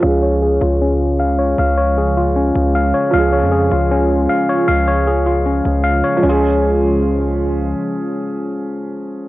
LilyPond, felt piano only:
\new Staff \with { instrumentName = "Felt piano" } { \time 4/4 \key des \major \tempo 4 = 155 <f des' aes'>1~ | <f des' aes'>1 | <f des' aes'>1~ | <f des' aes'>1 |
<f des' aes'>1~ | <f des' aes'>1 | }